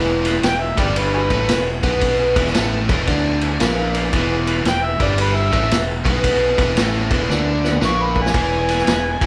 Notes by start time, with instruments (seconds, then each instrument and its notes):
Already playing: fingered electric bass E1, overdriven electric guitar E2 E3, tonewheel organ B3 E4 G#4 B4
0.25 tonewheel organ B3 E4 G#4 B4, snare, ride
0.43 fingered electric bass E1, overdriven electric guitar E2, tonewheel organ B3 E4 G#4 B4, harmonica G5, snare, ride
0.61 harmonica E5
0.77 fingered electric bass G1, overdriven electric guitar G2 G3, tonewheel organ B3 E4 G#4 B4, harmonica G4 B4 D5, kick, ride
0.96 tonewheel organ B3 E4 G#4 C#5, harmonica B4, ride
1.14 harmonica F#4 G#4 B4
1.29 fingered electric bass A1, overdriven electric guitar A2 A3, tonewheel organ B3 E4 G#4 B4, kick, ride
1.48 fingered electric bass E1, overdriven electric guitar E2, tonewheel organ B3 E4 G#4 C#5, snare, ride
1.82 fingered electric bass B1, overdriven electric guitar B2 B3, tonewheel organ B3 E4 G#4 B4, kick, ride
1.99 tonewheel organ B3 E4 G#4 B4, kick, ride
2.35 fingered electric bass E1, overdriven electric guitar E2 E3, tonewheel organ B3 E4 G#4 B4, kick, ride
2.46 snare
2.53 fingered electric bass A1, overdriven electric guitar A2 A3, tonewheel organ B3 E4 G#4 B4, snare, ride
2.88 fingered electric bass E1, overdriven electric guitar E2 E3, tonewheel organ B3 E4 G#4 C#5, kick, ride
3.07 fingered electric bass D2, overdriven electric guitar D3 D4, tonewheel organ B3 E4 G#4 C#5, kick, ride
3.41 tonewheel organ B3 E4 G#4 C#5 E5 G#5, ride
3.59 fingered electric bass A#1, overdriven electric guitar A#2 A#3, tonewheel organ B3 E4 G#4 B4 B5, snare, ride
3.94 tonewheel organ B3 E4 G#4 B4, ride
4.13 fingered electric bass E1, overdriven electric guitar E2 E3, tonewheel organ B3 E4 G#4 B4, kick, ride
4.47 tonewheel organ B3 E4 G#4 B4, ride
4.65 fingered electric bass E1, overdriven electric guitar E2, tonewheel organ B3 E4 G#4 B4, harmonica G5, snare, ride
4.84 harmonica E5
5.00 fingered electric bass G1, overdriven electric guitar G2 G3, tonewheel organ B3 E4 G#4 B4, harmonica D5, kick, ride
5.17 tonewheel organ B3 E4 G#4 B4, harmonica B4, ride
5.35 harmonica E5
5.52 fingered electric bass A1, overdriven electric guitar A2 A3, tonewheel organ B3 E4 G#4 B4, kick, ride
5.70 fingered electric bass E1, overdriven electric guitar E2, tonewheel organ B3 E4 G#4 B4, snare, ride
6.05 fingered electric bass B1, overdriven electric guitar B2 B3, tonewheel organ B3 E4 G#4 B4, kick, ride
6.23 tonewheel organ B3 E4 G#4 B4, kick, ride
6.57 fingered electric bass E1, overdriven electric guitar E2 E3, tonewheel organ B3 E4 G#4 B4, kick, snare, ride
6.75 fingered electric bass A1, overdriven electric guitar A2 A3, tonewheel organ B3 E4 G#4 C#5, snare, ride
7.10 fingered electric bass E1, overdriven electric guitar E2 E3, tonewheel organ B3 E4 G#4 B4, kick, ride
7.28 fingered electric bass D2, overdriven electric guitar D3 D4, tonewheel organ B3 E4 G#4 B4, snare
7.64 tonewheel organ B3 E4 G#4 B4, snare
7.73 mid tom
7.81 fingered electric bass A#1, overdriven electric guitar A#2 A#3, tonewheel organ B3 E4 G#4 B4, snare
7.85 harmonica C#6
8.02 harmonica B5
8.16 tonewheel organ B3 E4 G#4 B4, kick
8.22 harmonica G#5, snare
8.34 fingered electric bass E1, overdriven electric guitar E2 E3, tonewheel organ B3 E4 G#4 C#5, kick, ride
8.69 tonewheel organ B3 E4 G#4 B4, snare, ride
8.78 snare
8.87 fingered electric bass E1, overdriven electric guitar E2, tonewheel organ B3 E4 G#4 B4, snare, ride
9.21 fingered electric bass G1, overdriven electric guitar G2 G3, tonewheel organ B3 E4 B4, kick, ride